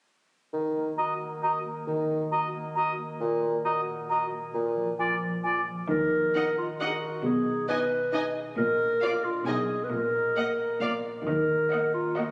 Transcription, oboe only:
0.98 D#5
1.43 D#5
2.33 D#5
2.77 D#5
3.65 D#5
4.10 D#5
5.00 D5
5.45 D5

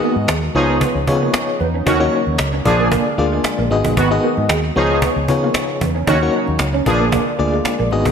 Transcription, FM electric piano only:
Already playing: B3 D#4 F#4 G#4 D#5
0.55 B3 D#4 F4 G#4 C#5
1.08 B3 D#4 F4 G#4 C#5
1.86 A#3 C#4 D#4 F#4 C#5
2.00 A#3 C#4 D#4 F#4 C#5
2.65 A#3 D4 F4 G#4 D5
3.18 A#3 D4 F4 G#4 D5
3.71 B3 D#4 F#4 G#4 D#5
4.11 B3 D#4 F#4 G#4 D#5
4.76 B3 D#4 F4 G#4 C#5
5.29 B3 D#4 F4 G#4 C#5
6.08 A#3 C#4 D#4 F#4 C#5
6.22 A#3 C#4 D#4 F#4 C#5
6.87 A#3 D4 F4 G#4 B4
6.94 D5
7.39 A#3 D4 F4 G#4 D5
7.92 B3 D#4 F#4 G#4 D#5

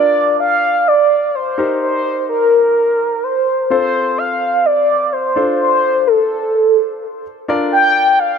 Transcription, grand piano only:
Already playing: D4 F4 A#4 D5
1.58 D#4 G4 A#4 C5
3.70 C4 F4 A4 C5
5.36 D4 F4 A4 C5
7.48 D4 F4 A#4 D5

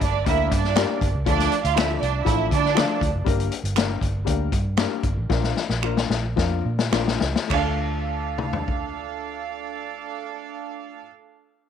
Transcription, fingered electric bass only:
0.01 G1
0.26 D2
0.52 G2
1.01 G1
1.15 C#2
1.26 D2
1.64 D2
2.02 C2
2.26 A1
2.51 D3
3.01 D2
3.13 F#1
3.26 G1
3.63 G1
4.01 G1
4.27 D2
4.52 G2
5.04 G1
5.17 A1
5.30 A#1
5.69 A#1
6.10 A#1
6.37 F2
6.65 A#2
6.92 A#1
7.22 C#2
7.50 D2

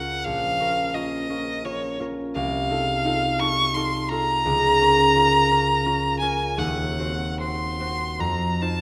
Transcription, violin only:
Already playing: F#5
0.24 F5
0.94 D#5
1.65 C#5
2.35 F5
3.40 C#6
3.74 C6
4.09 A#5
6.20 G#5
6.58 F#5
7.40 C6
8.20 A#5
8.62 A5

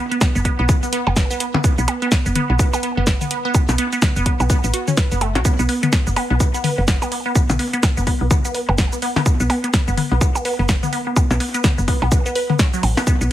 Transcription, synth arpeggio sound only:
0.11 B3
0.21 B3
0.35 B3
0.45 B3
0.59 B3
0.69 B3
0.83 B3
0.93 B3
1.07 B3
1.16 B3
1.31 B3
1.40 B3
1.54 B3
1.64 B3
1.78 B3
1.88 B3
2.02 B3
2.12 B3
2.26 B3
2.36 B3
2.50 B3
2.59 B3
2.74 B3
2.83 B3
2.97 B3
3.07 B3
3.21 B3
3.31 B3
3.45 B3
3.55 B3
3.69 B3
3.78 B3
3.93 B3
4.02 B3
4.16 B3
4.26 B3
4.40 B3
4.50 B3
4.64 B3
4.74 F#4
4.88 C#4
4.97 B4
5.11 B3
5.21 A3
5.35 F#4
5.45 B3
5.59 B3
5.69 B3
5.83 B3
5.93 B3
6.07 B3
6.16 B3
6.30 B3
6.40 B3
6.54 B3
6.64 B3
6.78 B3
6.88 B3
7.02 B3
7.12 B3
7.26 B3
7.35 B3
7.50 B3
7.59 B3
7.73 B3
7.83 B3
7.97 B3
8.07 B3
8.21 B3
8.31 B3
8.45 B3
8.55 B3
8.69 B3
8.78 B3
8.93 B3
9.02 B3
9.16 B3
9.26 B3
9.40 B3
9.50 B3
9.64 B3
9.74 B3
9.88 B3
9.97 B3
10.12 B3
10.21 B3
10.35 B3
10.45 B3
10.59 B3
10.69 B3
10.83 B3
10.93 B3
11.07 B3
11.16 B3
11.31 B3
11.40 B3
11.54 B3
11.64 B3
11.78 B3
11.88 B3
12.02 B3
12.12 B3
12.26 B3
12.35 B4
12.50 B3
12.59 C#4
12.73 F#3
12.97 B3
13.07 B3
13.21 B3

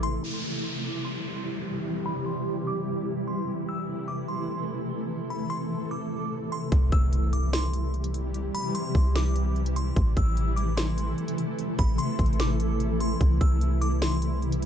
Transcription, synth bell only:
0.03 C6
0.44 E6
0.84 D6
1.05 C6
2.06 B5
2.26 C6
2.67 D6
3.28 C6
3.69 E6
4.08 D6
4.28 C6
5.30 B5
5.50 C6
5.91 D6
6.52 C6
6.92 E6
7.33 D6
7.53 C6
8.55 B5
8.75 C6
9.16 D6
9.76 C6
10.17 E6
10.56 D6
10.77 C6
11.79 B5
11.98 C6
12.40 D6
13.01 C6
13.41 E6
13.81 D6
14.02 C6

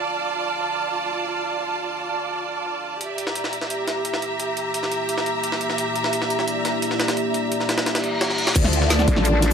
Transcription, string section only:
Already playing: F4 D5 A5
3.01 G4
3.07 E5
3.16 A#5
8.56 F4
8.63 A5
8.83 D5

